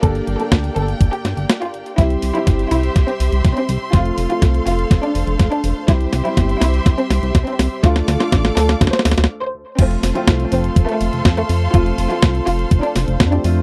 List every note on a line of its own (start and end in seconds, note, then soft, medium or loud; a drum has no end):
0.00 0.22 G1 loud
0.00 1.94 A#3 medium
0.00 0.37 A#3 medium
0.00 0.37 D4 medium
0.00 1.94 G4 medium
0.00 0.37 G4 medium
0.00 0.26 A4 loud
0.00 0.37 A4 loud
0.00 1.94 D5 medium
0.00 1.96 G5 medium
0.00 kick loud
0.00 closed hi-hat medium
0.15 closed hi-hat soft
0.27 0.37 G1 medium
0.27 closed hi-hat medium
0.39 1.95 A#3 medium
0.39 1.95 D4 medium
0.39 1.95 G4 medium
0.39 0.63 A4 medium
0.39 1.95 A4 medium
0.39 closed hi-hat soft
0.52 0.70 D2 loud
0.52 kick loud
0.52 snare loud
0.52 closed hi-hat medium
0.64 closed hi-hat soft
0.76 0.95 G1 medium
0.76 1.00 A4 medium
0.76 closed hi-hat medium
0.88 closed hi-hat soft
1.01 1.10 G1 loud
1.01 kick loud
1.01 closed hi-hat medium
1.12 1.44 G4 medium
1.12 closed hi-hat soft
1.25 1.34 G2 medium
1.25 snare medium
1.25 closed hi-hat medium
1.37 1.46 G1 medium
1.37 closed hi-hat soft
1.50 snare loud
1.50 closed hi-hat medium
1.62 1.85 F4 medium
1.62 closed hi-hat soft
1.74 closed hi-hat soft
1.86 closed hi-hat soft
1.98 2.17 C2 loud
1.98 2.32 G3 medium
1.98 2.32 C4 medium
1.98 2.22 E4 loud
1.98 2.32 E4 medium
1.98 2.32 G4 medium
1.98 3.91 G4 medium
1.98 3.91 C5 medium
1.98 3.91 E5 medium
1.98 5.85 C6 medium
1.98 kick loud
1.98 snare soft
1.98 closed hi-hat medium
2.10 closed hi-hat soft
2.22 2.32 C2 medium
2.22 open hi-hat loud
2.35 3.90 G3 medium
2.35 3.90 C4 medium
2.35 2.58 E4 medium
2.35 3.90 E4 medium
2.35 3.90 G4 loud
2.35 closed hi-hat soft
2.47 2.66 G1 medium
2.47 kick loud
2.47 snare medium
2.47 closed hi-hat loud
2.59 closed hi-hat soft
2.71 2.90 C2 medium
2.71 2.95 E4 medium
2.71 open hi-hat loud
2.83 closed hi-hat soft
2.96 3.05 C2 loud
2.96 kick loud
2.96 snare soft
2.96 closed hi-hat medium
3.08 3.39 C4 medium
3.08 closed hi-hat soft
3.20 3.29 C2 medium
3.20 open hi-hat loud
3.32 3.42 C2 medium
3.32 closed hi-hat soft
3.44 3.54 C2 medium
3.44 kick loud
3.44 snare soft
3.44 closed hi-hat medium
3.57 3.80 C4 medium
3.57 closed hi-hat soft
3.69 3.78 C2 loud
3.69 open hi-hat loud
3.93 4.12 F1 loud
3.93 4.27 F3 loud
3.93 4.27 A3 medium
3.93 4.27 C4 medium
3.93 4.27 F4 loud
3.93 4.17 F4 loud
3.93 5.87 A4 medium
3.93 7.80 C5 medium
3.93 5.87 F5 medium
3.93 kick loud
3.93 snare medium
3.93 closed hi-hat loud
4.05 closed hi-hat soft
4.17 4.27 F1 medium
4.17 open hi-hat loud
4.30 5.85 F3 medium
4.30 5.85 A3 medium
4.30 5.85 C4 medium
4.30 5.85 F4 medium
4.30 4.53 F4 medium
4.30 closed hi-hat soft
4.42 4.61 C2 medium
4.42 kick loud
4.42 snare medium
4.42 closed hi-hat loud
4.54 closed hi-hat soft
4.66 4.85 F1 medium
4.66 4.90 F4 medium
4.66 open hi-hat loud
4.79 closed hi-hat soft
4.91 5.00 F1 medium
4.91 kick loud
4.91 snare medium
4.91 closed hi-hat medium
5.03 5.34 D4 medium
5.03 closed hi-hat soft
5.15 5.24 F1 medium
5.15 open hi-hat loud
5.27 5.37 F1 medium
5.27 closed hi-hat soft
5.39 5.49 F1 medium
5.39 kick loud
5.39 snare medium
5.39 closed hi-hat medium
5.52 5.75 D4 medium
5.52 closed hi-hat soft
5.64 5.73 F1 loud
5.64 open hi-hat loud
5.88 6.07 C2 loud
5.88 6.22 G3 medium
5.88 6.22 C4 medium
5.88 6.22 E4 medium
5.88 6.12 E4 loud
5.88 6.22 G4 medium
5.88 7.82 G4 medium
5.88 7.82 E5 medium
5.88 7.82 C6 medium
5.88 kick loud
5.88 snare medium
5.88 closed hi-hat medium
6.01 closed hi-hat soft
6.13 6.22 C2 medium
6.13 snare medium
6.13 open hi-hat loud
6.25 7.81 G3 loud
6.25 7.81 C4 medium
6.25 6.48 E4 medium
6.25 7.81 E4 medium
6.25 7.81 G4 loud
6.25 closed hi-hat soft
6.37 6.56 G1 loud
6.37 kick loud
6.37 snare medium
6.37 closed hi-hat loud
6.49 closed hi-hat soft
6.61 6.80 C2 medium
6.61 6.85 E4 medium
6.61 snare medium
6.61 open hi-hat loud
6.74 closed hi-hat soft
6.86 6.95 C2 loud
6.86 kick loud
6.86 snare medium
6.86 closed hi-hat medium
6.98 7.29 C4 loud
6.98 closed hi-hat soft
7.10 7.20 C2 medium
7.10 snare medium
7.10 open hi-hat loud
7.22 7.32 C2 medium
7.22 closed hi-hat soft
7.35 7.44 C2 medium
7.35 kick loud
7.35 snare medium
7.35 closed hi-hat medium
7.47 7.70 C4 medium
7.47 closed hi-hat soft
7.59 7.68 C2 medium
7.59 snare medium
7.59 open hi-hat loud
7.83 8.02 D2 loud
7.83 8.17 A3 medium
7.83 8.17 D4 medium
7.83 8.17 F4 medium
7.83 8.07 F4 loud
7.83 9.28 A4 medium
7.83 8.17 A4 loud
7.83 9.28 D5 medium
7.83 9.28 F5 medium
7.83 9.28 D6 medium
7.83 kick loud
7.83 snare medium
7.83 closed hi-hat medium
7.96 snare medium
7.96 closed hi-hat soft
8.08 8.17 D2 medium
8.08 snare medium
8.08 open hi-hat loud
8.20 9.30 A3 medium
8.20 9.30 D4 medium
8.20 8.44 F4 loud
8.20 9.30 F4 medium
8.20 9.30 A4 medium
8.20 snare medium
8.20 closed hi-hat soft
8.32 8.51 A1 loud
8.32 kick loud
8.32 snare loud
8.32 closed hi-hat medium
8.45 snare medium
8.45 closed hi-hat soft
8.56 8.75 D2 loud
8.56 8.80 A4 medium
8.56 snare loud
8.56 open hi-hat loud
8.69 snare medium
8.69 closed hi-hat soft
8.81 8.90 D2 loud
8.81 kick loud
8.81 snare loud
8.81 closed hi-hat medium
8.87 snare medium
8.93 9.25 C5 loud
8.93 snare medium
8.93 closed hi-hat soft
8.99 snare medium
9.05 9.15 D2 medium
9.05 snare loud
9.05 open hi-hat loud
9.12 snare medium
9.18 9.27 D2 medium
9.18 snare medium
9.18 closed hi-hat soft
9.24 snare loud
9.42 9.66 C5 loud
9.78 9.97 F1 loud
9.78 10.12 F3 medium
9.78 10.12 A3 medium
9.78 10.02 C4 loud
9.78 10.12 C4 medium
9.78 10.12 F4 medium
9.78 13.62 A4 medium
9.78 13.62 C5 medium
9.78 13.62 F5 medium
9.78 13.62 C6 medium
9.78 kick loud
9.78 closed hi-hat medium
9.78 crash loud
9.91 closed hi-hat soft
10.03 10.12 F1 medium
10.03 snare medium
10.03 open hi-hat loud
10.15 11.71 F3 loud
10.15 11.71 A3 medium
10.15 10.39 C4 medium
10.15 11.71 C4 medium
10.15 11.71 F4 loud
10.15 closed hi-hat soft
10.27 10.46 C2 loud
10.27 kick loud
10.27 snare loud
10.27 closed hi-hat loud
10.40 closed hi-hat soft
10.52 10.71 F1 medium
10.52 10.75 C4 loud
10.52 open hi-hat loud
10.64 closed hi-hat soft
10.76 10.86 F1 loud
10.76 kick loud
10.76 closed hi-hat loud
10.88 11.20 A3 loud
10.88 closed hi-hat soft
11.01 11.10 F1 medium
11.01 open hi-hat loud
11.13 11.22 F1 medium
11.13 closed hi-hat soft
11.25 11.44 F2 medium
11.25 kick loud
11.25 snare loud
11.25 closed hi-hat medium
11.37 11.61 A3 medium
11.37 closed hi-hat soft
11.49 11.68 F2 loud
11.49 open hi-hat loud
11.74 11.92 F1 loud
11.74 12.07 F3 loud
11.74 12.07 A3 medium
11.74 12.07 C4 medium
11.74 12.07 F4 loud
11.74 11.97 F4 loud
11.74 kick loud
11.74 closed hi-hat loud
11.86 closed hi-hat soft
11.98 12.08 F1 medium
11.98 open hi-hat loud
12.10 13.30 F3 medium
12.10 13.30 A3 medium
12.10 13.30 C4 medium
12.10 13.30 F4 medium
12.10 12.34 F4 loud
12.10 closed hi-hat soft
12.22 12.41 C2 loud
12.22 kick loud
12.22 snare loud
12.22 closed hi-hat loud
12.35 closed hi-hat soft
12.47 12.66 F1 medium
12.47 12.70 F4 loud
12.47 open hi-hat loud
12.59 closed hi-hat soft
12.71 12.81 F1 loud
12.71 kick loud
12.71 closed hi-hat loud
12.83 13.15 D4 loud
12.83 closed hi-hat soft
12.96 13.05 F1 medium
12.96 snare medium
12.96 open hi-hat loud
13.08 13.17 F1 medium
13.08 closed hi-hat soft
13.20 13.39 F2 medium
13.20 kick loud
13.20 snare loud
13.20 closed hi-hat loud
13.32 13.42 F3 medium
13.32 13.42 A3 medium
13.32 13.42 C4 medium
13.32 13.56 D4 medium
13.32 13.42 G4 medium
13.32 closed hi-hat soft
13.44 13.62 F2 loud
13.44 13.62 F3 loud
13.44 13.62 A3 medium
13.44 13.62 C4 medium
13.44 13.62 F4 loud
13.44 open hi-hat loud